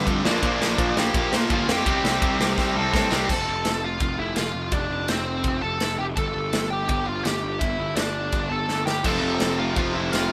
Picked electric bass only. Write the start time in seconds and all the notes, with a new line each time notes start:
0.07 F2
0.25 A#1
0.43 A#1
0.61 A#1
0.78 A#1
0.96 A#1
1.14 A#1
1.32 A#2
1.50 G1
1.68 F2
1.86 C2
2.04 C2
2.22 C2
2.40 C2
2.58 C2
2.76 C2
2.93 A2
3.12 C2
3.29 F1
3.47 F1
3.66 F1
4.01 F1
4.18 F1
4.37 F1
4.54 F1
4.72 F1
4.89 F1
5.08 F1
5.44 F1
5.63 F1
5.81 F1
5.99 F1
6.17 G1
6.35 G1
6.53 G1
6.89 G1
7.08 G1
7.25 G1
7.43 G1
7.61 G1
7.79 G1
7.96 G1
8.33 G1
8.50 G1
8.68 G1
8.86 G1
9.04 F1
9.22 F1
9.40 F1
9.76 F1
9.95 F1
10.13 F1